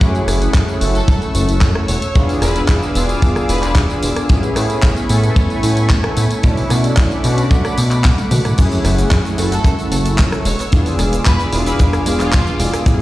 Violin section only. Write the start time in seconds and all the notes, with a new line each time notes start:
0.95 A4
1.88 C#5
2.02 C#5
2.42 B4
3.49 B4
3.63 B4
9.52 A4
10.46 C#5
10.59 C#5
11.25 B4
11.66 B4
12.20 F4